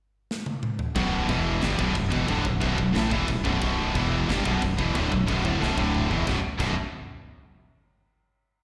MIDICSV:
0, 0, Header, 1, 4, 480
1, 0, Start_track
1, 0, Key_signature, 2, "minor"
1, 0, Tempo, 331309
1, 1384, Time_signature, 4, 2, 24, 8
1, 12507, End_track
2, 0, Start_track
2, 0, Title_t, "Distorted electric guitar"
2, 0, Program_c, 0, 30
2, 1391, Note_on_c, 0, 35, 91
2, 1399, Note_on_c, 0, 42, 104
2, 1406, Note_on_c, 0, 47, 101
2, 1857, Note_off_c, 0, 35, 0
2, 1857, Note_off_c, 0, 47, 0
2, 1863, Note_on_c, 0, 40, 80
2, 1865, Note_off_c, 0, 42, 0
2, 1874, Note_on_c, 0, 47, 92
2, 1883, Note_on_c, 0, 52, 96
2, 2325, Note_off_c, 0, 40, 0
2, 2331, Note_on_c, 0, 43, 87
2, 2341, Note_off_c, 0, 47, 0
2, 2343, Note_off_c, 0, 52, 0
2, 2347, Note_on_c, 0, 50, 93
2, 2349, Note_on_c, 0, 55, 111
2, 2558, Note_off_c, 0, 43, 0
2, 2564, Note_on_c, 0, 35, 95
2, 2566, Note_off_c, 0, 50, 0
2, 2572, Note_on_c, 0, 42, 94
2, 2575, Note_off_c, 0, 55, 0
2, 2580, Note_on_c, 0, 47, 110
2, 2794, Note_off_c, 0, 35, 0
2, 2807, Note_off_c, 0, 42, 0
2, 2811, Note_on_c, 0, 35, 64
2, 2818, Note_off_c, 0, 47, 0
2, 2824, Note_on_c, 0, 42, 80
2, 3013, Note_off_c, 0, 35, 0
2, 3020, Note_off_c, 0, 42, 0
2, 3044, Note_on_c, 0, 40, 106
2, 3058, Note_on_c, 0, 47, 101
2, 3069, Note_on_c, 0, 52, 110
2, 3285, Note_off_c, 0, 40, 0
2, 3291, Note_on_c, 0, 38, 93
2, 3294, Note_off_c, 0, 47, 0
2, 3297, Note_off_c, 0, 52, 0
2, 3300, Note_on_c, 0, 45, 103
2, 3303, Note_on_c, 0, 50, 111
2, 3533, Note_off_c, 0, 38, 0
2, 3539, Note_on_c, 0, 35, 66
2, 3540, Note_off_c, 0, 45, 0
2, 3541, Note_off_c, 0, 50, 0
2, 3547, Note_on_c, 0, 42, 62
2, 3739, Note_off_c, 0, 35, 0
2, 3743, Note_off_c, 0, 42, 0
2, 3770, Note_on_c, 0, 35, 96
2, 3780, Note_on_c, 0, 42, 101
2, 3786, Note_on_c, 0, 47, 110
2, 4000, Note_off_c, 0, 35, 0
2, 4003, Note_off_c, 0, 42, 0
2, 4017, Note_on_c, 0, 35, 64
2, 4020, Note_on_c, 0, 42, 75
2, 4024, Note_off_c, 0, 47, 0
2, 4219, Note_off_c, 0, 35, 0
2, 4221, Note_off_c, 0, 42, 0
2, 4241, Note_on_c, 0, 45, 94
2, 4256, Note_on_c, 0, 52, 94
2, 4266, Note_on_c, 0, 57, 101
2, 4492, Note_off_c, 0, 45, 0
2, 4497, Note_on_c, 0, 40, 90
2, 4500, Note_off_c, 0, 52, 0
2, 4506, Note_off_c, 0, 57, 0
2, 4511, Note_on_c, 0, 47, 106
2, 4516, Note_on_c, 0, 52, 118
2, 4736, Note_off_c, 0, 40, 0
2, 4739, Note_off_c, 0, 47, 0
2, 4741, Note_on_c, 0, 35, 58
2, 4745, Note_on_c, 0, 42, 68
2, 4751, Note_off_c, 0, 52, 0
2, 4943, Note_off_c, 0, 35, 0
2, 4945, Note_off_c, 0, 42, 0
2, 4980, Note_on_c, 0, 35, 102
2, 4988, Note_on_c, 0, 42, 94
2, 4999, Note_on_c, 0, 47, 111
2, 5209, Note_off_c, 0, 35, 0
2, 5218, Note_off_c, 0, 42, 0
2, 5227, Note_on_c, 0, 35, 106
2, 5233, Note_off_c, 0, 47, 0
2, 5235, Note_on_c, 0, 42, 92
2, 5249, Note_on_c, 0, 47, 112
2, 5709, Note_off_c, 0, 35, 0
2, 5712, Note_off_c, 0, 47, 0
2, 5713, Note_off_c, 0, 42, 0
2, 5718, Note_on_c, 0, 40, 98
2, 5729, Note_on_c, 0, 47, 99
2, 5738, Note_on_c, 0, 52, 99
2, 6195, Note_off_c, 0, 40, 0
2, 6201, Note_off_c, 0, 47, 0
2, 6201, Note_on_c, 0, 43, 85
2, 6205, Note_off_c, 0, 52, 0
2, 6210, Note_on_c, 0, 50, 98
2, 6220, Note_on_c, 0, 55, 107
2, 6433, Note_off_c, 0, 43, 0
2, 6439, Note_off_c, 0, 50, 0
2, 6439, Note_on_c, 0, 35, 93
2, 6445, Note_on_c, 0, 42, 86
2, 6446, Note_off_c, 0, 55, 0
2, 6452, Note_on_c, 0, 47, 100
2, 6675, Note_off_c, 0, 42, 0
2, 6676, Note_off_c, 0, 35, 0
2, 6682, Note_off_c, 0, 47, 0
2, 6691, Note_on_c, 0, 35, 54
2, 6692, Note_on_c, 0, 42, 65
2, 6881, Note_off_c, 0, 35, 0
2, 6882, Note_off_c, 0, 42, 0
2, 6923, Note_on_c, 0, 40, 97
2, 6934, Note_on_c, 0, 47, 111
2, 6935, Note_on_c, 0, 52, 100
2, 7158, Note_off_c, 0, 40, 0
2, 7163, Note_off_c, 0, 47, 0
2, 7164, Note_off_c, 0, 52, 0
2, 7172, Note_on_c, 0, 38, 93
2, 7186, Note_on_c, 0, 45, 96
2, 7193, Note_on_c, 0, 50, 114
2, 7397, Note_off_c, 0, 38, 0
2, 7403, Note_on_c, 0, 35, 67
2, 7406, Note_off_c, 0, 45, 0
2, 7412, Note_on_c, 0, 42, 77
2, 7413, Note_off_c, 0, 50, 0
2, 7597, Note_off_c, 0, 35, 0
2, 7602, Note_off_c, 0, 42, 0
2, 7637, Note_on_c, 0, 35, 91
2, 7653, Note_on_c, 0, 42, 100
2, 7658, Note_on_c, 0, 47, 95
2, 7874, Note_off_c, 0, 35, 0
2, 7880, Note_on_c, 0, 38, 88
2, 7883, Note_off_c, 0, 42, 0
2, 7886, Note_off_c, 0, 47, 0
2, 7896, Note_on_c, 0, 45, 103
2, 7903, Note_on_c, 0, 50, 106
2, 8114, Note_off_c, 0, 38, 0
2, 8120, Note_on_c, 0, 35, 86
2, 8124, Note_off_c, 0, 45, 0
2, 8127, Note_off_c, 0, 50, 0
2, 8130, Note_on_c, 0, 42, 101
2, 8140, Note_on_c, 0, 47, 105
2, 8346, Note_off_c, 0, 35, 0
2, 8351, Note_on_c, 0, 38, 93
2, 8359, Note_off_c, 0, 42, 0
2, 8364, Note_off_c, 0, 47, 0
2, 8365, Note_on_c, 0, 45, 96
2, 8370, Note_on_c, 0, 50, 97
2, 8825, Note_off_c, 0, 38, 0
2, 8831, Note_on_c, 0, 40, 102
2, 8837, Note_off_c, 0, 50, 0
2, 8838, Note_off_c, 0, 45, 0
2, 8843, Note_on_c, 0, 52, 102
2, 8845, Note_on_c, 0, 47, 105
2, 9065, Note_off_c, 0, 40, 0
2, 9071, Note_on_c, 0, 35, 83
2, 9076, Note_off_c, 0, 52, 0
2, 9077, Note_off_c, 0, 47, 0
2, 9088, Note_on_c, 0, 42, 106
2, 9094, Note_on_c, 0, 47, 99
2, 9221, Note_off_c, 0, 35, 0
2, 9230, Note_off_c, 0, 42, 0
2, 9233, Note_off_c, 0, 47, 0
2, 9554, Note_on_c, 0, 35, 88
2, 9557, Note_on_c, 0, 42, 94
2, 9570, Note_on_c, 0, 47, 99
2, 9749, Note_off_c, 0, 35, 0
2, 9751, Note_off_c, 0, 42, 0
2, 9758, Note_off_c, 0, 47, 0
2, 12507, End_track
3, 0, Start_track
3, 0, Title_t, "Fingered electric bass"
3, 0, Program_c, 1, 33
3, 1383, Note_on_c, 1, 23, 94
3, 1831, Note_off_c, 1, 23, 0
3, 1864, Note_on_c, 1, 28, 100
3, 2313, Note_off_c, 1, 28, 0
3, 2369, Note_on_c, 1, 31, 100
3, 2583, Note_off_c, 1, 31, 0
3, 2592, Note_on_c, 1, 23, 101
3, 2814, Note_off_c, 1, 23, 0
3, 2825, Note_on_c, 1, 23, 83
3, 3051, Note_off_c, 1, 23, 0
3, 3069, Note_on_c, 1, 28, 97
3, 3294, Note_off_c, 1, 28, 0
3, 3310, Note_on_c, 1, 26, 98
3, 3535, Note_off_c, 1, 26, 0
3, 3545, Note_on_c, 1, 23, 78
3, 3773, Note_off_c, 1, 23, 0
3, 3791, Note_on_c, 1, 23, 94
3, 4017, Note_off_c, 1, 23, 0
3, 4024, Note_on_c, 1, 23, 79
3, 4254, Note_off_c, 1, 23, 0
3, 4277, Note_on_c, 1, 33, 98
3, 4501, Note_off_c, 1, 33, 0
3, 4509, Note_on_c, 1, 28, 108
3, 4737, Note_off_c, 1, 28, 0
3, 4751, Note_on_c, 1, 23, 84
3, 4979, Note_off_c, 1, 23, 0
3, 4997, Note_on_c, 1, 23, 102
3, 5223, Note_off_c, 1, 23, 0
3, 5242, Note_on_c, 1, 23, 96
3, 5690, Note_off_c, 1, 23, 0
3, 5718, Note_on_c, 1, 28, 99
3, 6169, Note_off_c, 1, 28, 0
3, 6211, Note_on_c, 1, 31, 98
3, 6432, Note_off_c, 1, 31, 0
3, 6457, Note_on_c, 1, 23, 105
3, 6675, Note_off_c, 1, 23, 0
3, 6693, Note_on_c, 1, 23, 85
3, 6914, Note_off_c, 1, 23, 0
3, 6924, Note_on_c, 1, 28, 89
3, 7149, Note_off_c, 1, 28, 0
3, 7175, Note_on_c, 1, 26, 104
3, 7395, Note_off_c, 1, 26, 0
3, 7418, Note_on_c, 1, 23, 80
3, 7636, Note_off_c, 1, 23, 0
3, 7652, Note_on_c, 1, 23, 87
3, 7873, Note_off_c, 1, 23, 0
3, 7888, Note_on_c, 1, 26, 102
3, 8111, Note_off_c, 1, 26, 0
3, 8120, Note_on_c, 1, 23, 94
3, 8346, Note_off_c, 1, 23, 0
3, 8366, Note_on_c, 1, 26, 97
3, 8812, Note_off_c, 1, 26, 0
3, 8845, Note_on_c, 1, 28, 88
3, 9067, Note_off_c, 1, 28, 0
3, 9087, Note_on_c, 1, 23, 104
3, 9219, Note_off_c, 1, 23, 0
3, 9554, Note_on_c, 1, 23, 93
3, 9780, Note_off_c, 1, 23, 0
3, 12507, End_track
4, 0, Start_track
4, 0, Title_t, "Drums"
4, 448, Note_on_c, 9, 38, 73
4, 593, Note_off_c, 9, 38, 0
4, 670, Note_on_c, 9, 48, 84
4, 815, Note_off_c, 9, 48, 0
4, 910, Note_on_c, 9, 47, 91
4, 1055, Note_off_c, 9, 47, 0
4, 1145, Note_on_c, 9, 43, 95
4, 1290, Note_off_c, 9, 43, 0
4, 1385, Note_on_c, 9, 49, 64
4, 1387, Note_on_c, 9, 36, 105
4, 1530, Note_off_c, 9, 49, 0
4, 1532, Note_off_c, 9, 36, 0
4, 1868, Note_on_c, 9, 36, 102
4, 1871, Note_on_c, 9, 49, 60
4, 2013, Note_off_c, 9, 36, 0
4, 2016, Note_off_c, 9, 49, 0
4, 2340, Note_on_c, 9, 49, 66
4, 2357, Note_on_c, 9, 38, 113
4, 2485, Note_off_c, 9, 49, 0
4, 2502, Note_off_c, 9, 38, 0
4, 2590, Note_on_c, 9, 36, 107
4, 2735, Note_off_c, 9, 36, 0
4, 2828, Note_on_c, 9, 36, 90
4, 2828, Note_on_c, 9, 49, 64
4, 2972, Note_off_c, 9, 49, 0
4, 2973, Note_off_c, 9, 36, 0
4, 3069, Note_on_c, 9, 36, 111
4, 3214, Note_off_c, 9, 36, 0
4, 3309, Note_on_c, 9, 36, 100
4, 3311, Note_on_c, 9, 49, 58
4, 3454, Note_off_c, 9, 36, 0
4, 3456, Note_off_c, 9, 49, 0
4, 3548, Note_on_c, 9, 36, 86
4, 3693, Note_off_c, 9, 36, 0
4, 3787, Note_on_c, 9, 49, 58
4, 3788, Note_on_c, 9, 36, 102
4, 3932, Note_off_c, 9, 49, 0
4, 3933, Note_off_c, 9, 36, 0
4, 4029, Note_on_c, 9, 36, 88
4, 4174, Note_off_c, 9, 36, 0
4, 4275, Note_on_c, 9, 49, 63
4, 4292, Note_on_c, 9, 38, 121
4, 4420, Note_off_c, 9, 49, 0
4, 4437, Note_off_c, 9, 38, 0
4, 4512, Note_on_c, 9, 36, 106
4, 4657, Note_off_c, 9, 36, 0
4, 4753, Note_on_c, 9, 49, 63
4, 4754, Note_on_c, 9, 36, 88
4, 4898, Note_off_c, 9, 49, 0
4, 4899, Note_off_c, 9, 36, 0
4, 4997, Note_on_c, 9, 36, 101
4, 5142, Note_off_c, 9, 36, 0
4, 5240, Note_on_c, 9, 36, 106
4, 5240, Note_on_c, 9, 49, 58
4, 5384, Note_off_c, 9, 36, 0
4, 5385, Note_off_c, 9, 49, 0
4, 5727, Note_on_c, 9, 36, 105
4, 5733, Note_on_c, 9, 49, 57
4, 5872, Note_off_c, 9, 36, 0
4, 5878, Note_off_c, 9, 49, 0
4, 6217, Note_on_c, 9, 49, 69
4, 6234, Note_on_c, 9, 38, 115
4, 6362, Note_off_c, 9, 49, 0
4, 6379, Note_off_c, 9, 38, 0
4, 6453, Note_on_c, 9, 36, 118
4, 6598, Note_off_c, 9, 36, 0
4, 6695, Note_on_c, 9, 36, 94
4, 6701, Note_on_c, 9, 49, 64
4, 6840, Note_off_c, 9, 36, 0
4, 6846, Note_off_c, 9, 49, 0
4, 6934, Note_on_c, 9, 36, 100
4, 7079, Note_off_c, 9, 36, 0
4, 7174, Note_on_c, 9, 36, 100
4, 7174, Note_on_c, 9, 49, 66
4, 7319, Note_off_c, 9, 36, 0
4, 7319, Note_off_c, 9, 49, 0
4, 7415, Note_on_c, 9, 36, 91
4, 7560, Note_off_c, 9, 36, 0
4, 7655, Note_on_c, 9, 36, 104
4, 7666, Note_on_c, 9, 49, 59
4, 7800, Note_off_c, 9, 36, 0
4, 7811, Note_off_c, 9, 49, 0
4, 7894, Note_on_c, 9, 36, 90
4, 8039, Note_off_c, 9, 36, 0
4, 8149, Note_on_c, 9, 38, 69
4, 8294, Note_off_c, 9, 38, 0
4, 8369, Note_on_c, 9, 36, 117
4, 8514, Note_off_c, 9, 36, 0
4, 8614, Note_on_c, 9, 45, 84
4, 8759, Note_off_c, 9, 45, 0
4, 8852, Note_on_c, 9, 43, 97
4, 8997, Note_off_c, 9, 43, 0
4, 9086, Note_on_c, 9, 36, 113
4, 9097, Note_on_c, 9, 38, 81
4, 9231, Note_off_c, 9, 36, 0
4, 9242, Note_off_c, 9, 38, 0
4, 9560, Note_on_c, 9, 57, 86
4, 9562, Note_on_c, 9, 36, 108
4, 9704, Note_off_c, 9, 57, 0
4, 9707, Note_off_c, 9, 36, 0
4, 12507, End_track
0, 0, End_of_file